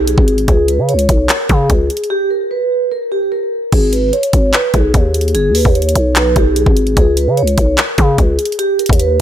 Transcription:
0.00 0.17 B1 loud
0.07 0.46 G#4 medium
0.07 closed hi-hat medium
0.18 0.47 G#1 loud
0.18 kick loud
0.28 closed hi-hat medium
0.38 closed hi-hat soft
0.48 0.80 C#2 loud
0.48 0.66 G#4 loud
0.48 kick loud
0.48 closed hi-hat medium
0.68 0.87 B4 medium
0.68 closed hi-hat medium
0.79 0.95 C#3 loud
0.89 1.27 C#5 medium
0.89 closed hi-hat medium
0.94 1.08 C#2 loud
0.99 closed hi-hat medium
1.09 1.28 B1 loud
1.09 kick medium
1.09 closed hi-hat medium
1.29 1.48 A#4 medium
1.29 clap loud
1.29 closed hi-hat medium
1.49 1.69 C#3 loud
1.49 2.07 G#4 medium
1.49 kick medium
1.49 closed hi-hat medium
1.70 1.89 C#2 loud
1.70 kick loud
1.70 closed hi-hat medium
1.90 closed hi-hat medium
1.97 closed hi-hat medium
2.04 closed hi-hat soft
2.10 2.29 G4 loud
2.31 2.49 A#4 medium
2.51 2.89 B4 medium
2.92 3.10 A#4 medium
3.12 3.30 G4 medium
3.32 3.70 A#4 medium
3.72 4.11 G#1 loud
3.72 3.91 G#4 loud
3.72 kick loud
3.72 closed hi-hat medium
3.72 crash loud
3.93 4.11 B4 medium
3.93 closed hi-hat medium
4.13 4.51 C#5 medium
4.13 closed hi-hat medium
4.23 closed hi-hat medium
4.33 4.53 G#1 loud
4.33 kick medium
4.33 closed hi-hat medium
4.53 4.72 B4 medium
4.53 clap loud
4.53 closed hi-hat medium
4.74 4.93 B1 loud
4.74 5.31 G#4 medium
4.74 kick medium
4.74 closed hi-hat medium
4.94 5.36 D#2 loud
4.94 kick loud
4.94 closed hi-hat medium
5.14 closed hi-hat medium
5.21 closed hi-hat medium
5.28 closed hi-hat soft
5.35 5.51 G1 loud
5.35 5.53 G#4 loud
5.35 closed hi-hat medium
5.50 5.64 D#2 loud
5.55 5.73 B4 medium
5.55 open hi-hat loud
5.65 5.94 D#2 loud
5.65 kick loud
5.75 6.13 C#5 medium
5.75 closed hi-hat medium
5.82 closed hi-hat medium
5.89 closed hi-hat medium
5.95 6.34 B1 loud
5.95 closed hi-hat medium
6.16 6.34 B4 medium
6.16 clap loud
6.16 closed hi-hat medium
6.36 6.65 B1 loud
6.36 6.54 G4 medium
6.36 kick medium
6.36 closed hi-hat medium
6.56 6.94 G#4 medium
6.56 closed hi-hat medium
6.66 6.96 G#1 loud
6.66 kick loud
6.77 closed hi-hat medium
6.87 closed hi-hat soft
6.97 7.29 C#2 loud
6.97 7.15 G#4 loud
6.97 kick loud
6.97 closed hi-hat medium
7.17 7.35 B4 medium
7.17 closed hi-hat medium
7.27 7.44 C#3 loud
7.37 7.75 C#5 medium
7.37 closed hi-hat medium
7.42 7.57 C#2 loud
7.47 closed hi-hat medium
7.58 7.77 B1 loud
7.58 kick medium
7.58 closed hi-hat medium
7.78 7.96 A#4 medium
7.78 clap loud
7.78 closed hi-hat medium
7.98 8.18 C#3 loud
7.98 8.55 G#4 medium
7.98 kick loud
7.98 closed hi-hat medium
8.18 8.38 C#2 loud
8.18 kick loud
8.18 closed hi-hat medium
8.39 closed hi-hat medium
8.45 closed hi-hat medium
8.52 closed hi-hat soft
8.59 8.77 G4 loud
8.59 closed hi-hat medium
8.79 8.97 A#4 medium
8.79 closed hi-hat medium
8.86 9.19 D#2 loud
8.86 kick loud
8.86 closed hi-hat medium
8.93 closed hi-hat medium
8.99 9.21 B4 medium
8.99 closed hi-hat medium

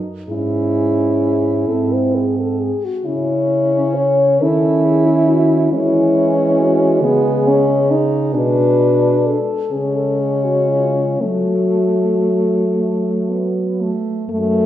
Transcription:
0.29 1.64 G#2 soft
0.29 1.65 C#4 soft
0.29 2.35 E4 soft
0.29 1.69 G#4 medium
1.68 2.71 G#2 soft
1.68 2.72 C4 soft
1.68 1.95 A4 medium
1.93 2.17 C5 soft
2.15 2.38 G#4 soft
2.39 2.62 A4 soft
2.60 2.86 G#4 soft
2.85 3.07 F#4 soft
3.05 4.43 C#3 soft
3.05 4.38 C#4 soft
3.05 4.44 C#4 medium
3.05 3.97 E4 medium
3.96 4.43 C#5 medium
4.41 5.71 D#3 soft
4.41 5.70 C#4 soft
4.41 5.73 E4 medium
4.41 4.86 A4 medium
4.85 5.09 G#4 soft
5.07 5.30 E4 medium
5.28 5.74 F#4 medium
5.72 7.04 E3 medium
5.72 9.38 G#3 soft
5.72 7.00 C#4 medium
5.72 6.41 E4 medium
6.58 7.04 F#4 medium
7.02 8.36 C#3 soft
7.02 7.49 B3 medium
7.02 8.06 G#4 medium
7.47 7.92 C#4 medium
7.91 8.34 D#4 medium
8.34 9.43 B2 medium
8.34 9.41 D4 medium
8.34 9.28 B4 medium
9.26 9.73 A4 medium
9.72 11.17 C#3 soft
9.72 11.18 G#3 soft
9.72 11.23 C#4 soft
9.72 9.97 G#4 medium
9.96 10.21 A4 medium
10.20 10.46 G#4 medium
10.45 10.71 F#4 soft
10.69 11.21 F4 soft
11.20 13.92 F#3 soft
11.20 12.64 A3 soft
11.20 13.56 A3 soft
11.20 12.75 F#4 soft
12.77 13.31 A3 soft
13.30 13.82 B3 soft
13.81 14.30 A3 soft
14.30 14.66 F#2 soft
14.30 14.66 A3 medium

